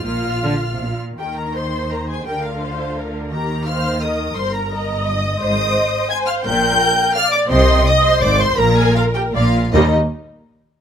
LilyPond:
<<
  \new Staff \with { instrumentName = "Violin section" } { \time 3/4 \key ees \major \tempo 4 = 168 f'''2~ f'''8 r8 | g''8 bes''8 c'''4 bes''8 aes''8 | g''8 f''2 r8 | bes''4 f'''4 ees'''4 |
c'''8 bes''4. ees'''4 | ees'''2 aes'''8 f'''8 | g'''2 f'''8 d'''8 | c'''4 ees'''8 c'''8 d'''8 c'''8 |
bes''8 aes''8 f''8 g''8 f''4 | ees''8 r2 r8 | }
  \new Staff \with { instrumentName = "Viola section" } { \time 3/4 \key ees \major f'2~ f'8 r8 | bes'4 c''2 | bes'4 c''4 bes'4 | g'4 c''4 bes'4~ |
bes'4 ees''2 | c''2 c''4 | bes'2 d''4 | ees''4 ees''4 c''4 |
bes'2 d''8 r8 | <g bes>8 r2 r8 | }
  \new Staff \with { instrumentName = "Violin section" } { \time 3/4 \key ees \major f''2~ f''8 r8 | g'8 bes'8 c''4 bes'8 aes'8 | g'8 f'2 r8 | bes'4 f''4 ees''4 |
c''8 bes'4. ees''4 | ees''2 aes''8 f''8 | g''2 f''8 d''8 | c''4 ees''8 c''8 d''8 c''8 |
bes'8 aes'8 f'8 g'8 f'4 | ees'8 r2 r8 | }
  \new Staff \with { instrumentName = "Cello section" } { \clef bass \time 3/4 \key ees \major bes,4 d8. c16 bes,4 | ees2. | d2. | ees2. |
g,2. | aes,4 r2 | bes,4 r2 | c4 r4 aes,4 |
bes,4 r4 bes,4 | ees,8 r2 r8 | }
  \new Staff \with { instrumentName = "Double bass section" } { \clef bass \time 3/4 \key ees \major bes,,2 bes,,8 r8 | ees,2. | d,2. | ees,2. |
g,,2. | aes,,4 r2 | bes,,4 r2 | c,4 r4 aes,,4 |
bes,,4 r4 bes,,4 | ees,8 r2 r8 | }
>>